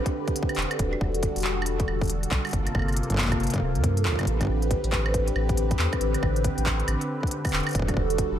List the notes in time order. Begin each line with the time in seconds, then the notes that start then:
Already playing: D3 C4 G4 B4
0.06 kick, closed hi-hat
0.28 kick, closed hi-hat
0.36 closed hi-hat
0.43 kick
0.49 closed hi-hat, high woodblock
0.55 E1, clap, closed hi-hat
0.62 closed hi-hat
0.71 closed hi-hat, high woodblock
0.79 E1 G3 F#4 A4, kick, closed hi-hat
0.93 high woodblock
1.01 E1, kick
1.14 closed hi-hat
1.23 kick, closed hi-hat
1.36 E1, closed hi-hat
1.38 closed hi-hat
1.40 closed hi-hat
1.42 clap, closed hi-hat
1.62 high woodblock
1.66 closed hi-hat
1.80 kick, closed hi-hat
1.88 E1, high woodblock
2.01 kick, closed hi-hat
2.03 closed hi-hat
2.05 closed hi-hat
2.08 closed hi-hat
2.10 closed hi-hat
2.23 closed hi-hat
2.31 B1, kick, clap
2.45 closed hi-hat, high woodblock
2.47 closed hi-hat
2.49 closed hi-hat
2.51 closed hi-hat
2.53 G1 C3 A#3 F4, kick, closed hi-hat
2.67 closed hi-hat, high woodblock
2.75 G1, kick, high woodblock
2.79 high woodblock
2.82 high woodblock
2.88 closed hi-hat, high woodblock
2.92 closed hi-hat, high woodblock
2.97 closed hi-hat
3.03 closed hi-hat
3.10 G1, kick, closed hi-hat
3.12 kick
3.14 kick
3.16 kick, clap
3.18 kick, clap
3.22 kick, clap
3.25 kick, clap
3.29 kick, closed hi-hat, high woodblock
3.32 kick
3.40 G1, closed hi-hat
3.43 closed hi-hat
3.47 closed hi-hat
3.50 closed hi-hat
3.54 kick, closed hi-hat
3.56 kick
3.58 kick
3.60 D1, kick
3.75 G2, closed hi-hat
3.84 kick, closed hi-hat
3.97 closed hi-hat
4.05 D2, kick, clap
4.09 kick
4.12 kick
4.16 kick, closed hi-hat, high woodblock
4.19 kick
4.21 kick
4.23 kick
4.25 A1 D3 C4 G4 B4, kick, closed hi-hat
4.41 kick, closed hi-hat, high woodblock
4.43 kick
4.45 kick
4.47 A1, kick
4.62 closed hi-hat
4.71 kick, closed hi-hat
4.84 A1, closed hi-hat
4.92 kick, clap
5.06 high woodblock
5.14 kick, closed hi-hat
5.28 closed hi-hat
5.36 A1, high woodblock
5.49 kick, closed hi-hat
5.57 closed hi-hat
5.71 kick, closed hi-hat
5.79 E2, clap
5.93 kick, closed hi-hat, high woodblock
6.01 A1, closed hi-hat
6.14 closed hi-hat, high woodblock
6.23 A1, kick, high woodblock
6.36 closed hi-hat
6.44 kick, closed hi-hat
6.58 A1, closed hi-hat
6.66 kick, clap
6.80 closed hi-hat
6.88 A1, closed hi-hat, high woodblock
7.01 closed hi-hat
7.23 kick, closed hi-hat
7.31 closed hi-hat
7.45 kick, closed hi-hat, high woodblock
7.47 closed hi-hat
7.49 closed hi-hat
7.51 E1, clap, closed hi-hat
7.53 closed hi-hat
7.60 closed hi-hat
7.63 closed hi-hat
7.67 closed hi-hat, high woodblock
7.69 closed hi-hat
7.71 closed hi-hat
7.73 closed hi-hat
7.75 E1 G3 F#4 A4, kick, closed hi-hat
7.79 kick
7.82 kick
7.88 kick, closed hi-hat, high woodblock
7.94 E1, kick
7.97 kick
8.10 closed hi-hat
8.18 kick, closed hi-hat
8.32 E1